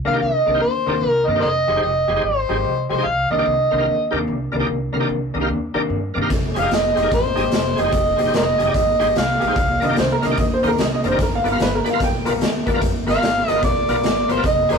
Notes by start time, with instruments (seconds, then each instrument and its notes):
0.05 upright bass C2, clean electric guitar C3 D#3 A#3 D4, tonewheel organ A#4 D5, harmonica F5
0.13 tonewheel organ D#4 G4 A#4 D5
0.21 upright bass C2, harmonica D#5
0.46 upright bass C2, clean electric guitar C3 D#3 A#3 D4, tonewheel organ A#4 D5
0.54 tonewheel organ D#4 G4 A#4 C5
0.61 upright bass D#2, harmonica C5
0.86 upright bass D#2, clean electric guitar C3 D#3 A#3 D4, tonewheel organ D#4 G4 A#4 D5
1.02 upright bass C2
1.10 harmonica A#4
1.27 upright bass G2, clean electric guitar C3 D#3 A#3 D4, tonewheel organ A#4 D5, harmonica D#5
1.35 tonewheel organ D#4 G4 A#4 D5
1.41 upright bass F1, harmonica A#4 C5 D#5
1.68 upright bass F1, clean electric guitar F3 G#3 D#4 G4, tonewheel organ G#4 C5
1.76 tonewheel organ D#4 G4 G#4 C5
1.82 upright bass F1, harmonica D#5
2.08 upright bass F1, clean electric guitar F3 G#3 D#4 G4, tonewheel organ G#4 C5
2.16 tonewheel organ D#4 G4 G#4 C5
2.23 upright bass G#1, harmonica C5
2.49 upright bass G#1, clean electric guitar F3 G#3 D#4 G4, tonewheel organ D#4 G4 G#4 C5
2.64 upright bass C2
2.90 upright bass C2, clean electric guitar F3 G#3 D#4 G4, tonewheel organ G#4 C5, harmonica C5
2.98 tonewheel organ D#4 G4 G#4 C5
3.05 upright bass C2, harmonica F5
3.30 upright bass C2, clean electric guitar C3 D#3 A#3 D4, tonewheel organ A#4 D5, harmonica D#5
3.38 tonewheel organ D#4 G4 A#4 D5
3.46 upright bass C2
3.71 upright bass C2, clean electric guitar C3 D#3 A#3 D4, tonewheel organ A#4 C5
3.78 tonewheel organ D#4 G4 A#4 F5
3.86 upright bass D#2
4.11 upright bass D#2, clean electric guitar C3 D#3 A#3 D4, tonewheel organ D#4 G4 A#4 D5
4.27 upright bass C2
4.52 upright bass C2, clean electric guitar C3 D#3 A#3 D4, tonewheel organ A#4 D5
4.59 tonewheel organ D#4 G4 A#4 D5
4.68 upright bass C2
4.93 upright bass C2, clean electric guitar C3 D#3 A#3 D4, tonewheel organ A#4 F5
5.00 tonewheel organ D#4 G4 A#4 D5
5.09 upright bass C2
5.34 upright bass C2, clean electric guitar C3 D#3 A#3 D4, tonewheel organ A#4 D#5
5.40 tonewheel organ D#4 G4 A#4 F5
5.50 upright bass D#2
5.74 upright bass D#2, clean electric guitar C3 D#3 A#3 D4, tonewheel organ D#4 G4 A#4 D5
5.90 upright bass G2
6.14 upright bass G2, clean electric guitar C3 D#3 A#3 D4, tonewheel organ A#4 D5
6.22 tonewheel organ D#4 G4 A#4 F5
6.30 upright bass F1, kick, snare, closed hi-hat
6.54 upright bass F1, clean electric guitar F3 G#3 D#4 G4, tonewheel organ G#4 C5, closed hi-hat
6.59 tonewheel organ D#4 G4 G#4 D#5, harmonica F5
6.71 upright bass F1, harmonica D#5, snare, closed hi-hat
6.94 upright bass F1, clean electric guitar F3 G#3 D#4 G4, tonewheel organ G#4 C5, snare, closed hi-hat
7.02 tonewheel organ D#4 G4 G#4 A#4
7.12 upright bass G#1, harmonica C5, kick, closed hi-hat
7.35 upright bass G#1, clean electric guitar F3 G#3 D#4 G4, tonewheel organ D#4 G4 G#4 D#5, closed hi-hat
7.52 upright bass F1, snare, closed hi-hat
7.76 upright bass F1, clean electric guitar F3 G#3 D#4 G4, tonewheel organ G#4 C5, harmonica D#5, closed hi-hat
7.83 tonewheel organ D#4 G4 G#4 C5
7.92 upright bass F1, kick, closed hi-hat
8.16 upright bass F1, clean electric guitar D#4 G4, tonewheel organ G#4 C5, closed hi-hat
8.20 clean electric guitar F3 G#3
8.25 tonewheel organ D#4 G4 G#4 C5
8.34 upright bass F1, harmonica A#4 C5 D#5, snare, closed hi-hat
8.58 upright bass F1, clean electric guitar F3 G#3 D#4 G4, tonewheel organ G#4 D#5, closed hi-hat
8.65 tonewheel organ D#4 G4 G#4 D#5
8.70 harmonica D5
8.74 upright bass G#1, harmonica D#5, kick, closed hi-hat
8.99 upright bass G#1, clean electric guitar F3 G#3 D#4 G4, tonewheel organ D#4 G4 G#4 C5, closed hi-hat
9.16 upright bass C2, harmonica F5, snare, closed hi-hat
9.40 upright bass A#1, clean electric guitar F3 G#3 D#4 G4, tonewheel organ G#4 A#4, closed hi-hat
9.47 tonewheel organ D#4 G4 G#4 C5
9.56 upright bass C2, kick, closed hi-hat
9.80 upright bass C2, clean electric guitar C3 D#3 A#3 D4, tonewheel organ A#4 D5, closed hi-hat
9.85 upright piano D#5
9.89 tonewheel organ D#4 G4 A#4 D5
9.96 upright bass C2, upright piano C5, snare, closed hi-hat
10.12 upright piano A#4
10.22 upright bass C2, clean electric guitar C3 D#3 A#3 D4, tonewheel organ A#4 F5, upright piano D#5, snare, closed hi-hat
10.31 tonewheel organ D#4 G4 A#4 D5
10.37 upright bass D#2, upright piano D#5, kick, closed hi-hat
10.54 upright piano C5
10.63 upright bass D#2, clean electric guitar C3 D#3 A#3 D4, tonewheel organ D#4 G4 A#4 C5, closed hi-hat
10.68 upright piano A#4
10.78 upright bass C2, upright piano D#5, snare, closed hi-hat
10.95 upright piano D#5
11.04 upright bass F1, clean electric guitar C3 D#3 A#3 D4, tonewheel organ A#4 D5, closed hi-hat
11.08 tonewheel organ D#4, upright piano C5
11.12 tonewheel organ G4 A#4 D5
11.19 upright bass G1, upright piano A#4, kick, snare, closed hi-hat
11.35 upright piano F5
11.44 upright bass G1, clean electric guitar G3 B3 F4 A#4, tonewheel organ B4 D5, closed hi-hat
11.48 tonewheel organ F4 A#4, upright piano F5
11.52 tonewheel organ B4 F5
11.60 upright bass G1, upright piano B4, snare, closed hi-hat
11.75 upright piano A#4
11.84 upright bass G1, clean electric guitar G3 B3 F4 A#4, tonewheel organ B4 D5, closed hi-hat
11.90 tonewheel organ F4 A#4 B4 F5, upright piano F5
12.00 upright bass B1, upright piano G5, kick, snare, closed hi-hat
12.25 upright bass B1, clean electric guitar G3 B3 F4 A#4, tonewheel organ F4 A#4 B4 D5, closed hi-hat
12.41 upright bass D2, snare, closed hi-hat
12.66 upright bass D2, clean electric guitar G3 B3 F4 A#4, tonewheel organ B4 D5, kick, closed hi-hat
12.74 tonewheel organ F4 A#4 B4 D5
12.82 upright bass G1, kick, closed hi-hat
13.07 upright bass G1, clean electric guitar G3 B3 F4 A#4, tonewheel organ B4 F5, harmonica F5, snare, closed hi-hat
13.14 tonewheel organ F4 A#4 B4 F5
13.22 upright bass G1, snare, closed hi-hat
13.48 upright bass G1, clean electric guitar G3 B3 F4 A#4, tonewheel organ B4 D5, harmonica D#5, closed hi-hat
13.55 tonewheel organ F4 A#4 B4 D5
13.63 upright bass B1, harmonica D5, kick, snare, closed hi-hat
13.88 upright bass B1, clean electric guitar G3 B3 F4 A#4, tonewheel organ F4 A#4 B4 D5, closed hi-hat
14.03 upright bass G1, snare, closed hi-hat
14.29 upright bass G1, clean electric guitar G3 B3 F4 A#4, tonewheel organ B4 F5, harmonica C5, closed hi-hat
14.36 tonewheel organ F4 A#4 B4 D5
14.44 upright bass F1, harmonica D#5, kick, closed hi-hat
14.69 upright bass F1, clean electric guitar F3 G#3 D#4 G4, tonewheel organ G#4 C5, harmonica A#4 C5 D#5, closed hi-hat